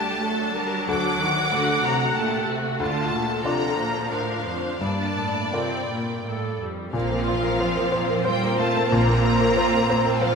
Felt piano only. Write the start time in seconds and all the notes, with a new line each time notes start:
Already playing: D2 F#5
0.88 D2
1.52 A3 F#5
2.80 D2
3.45 D4 F4 D5
4.81 G2
5.53 F4 A#4 D5
6.93 A#2
7.11 A#3
7.28 F4
7.43 A#4
7.60 C5
7.76 A#4
7.92 C5
8.09 A#4
8.25 C5
8.42 A#3
8.59 F4
8.76 A#4
8.92 A#2
9.08 A#3
9.25 F4
9.40 A#4
9.57 C5
9.73 A#4
9.90 C5
10.05 A#4
10.22 C5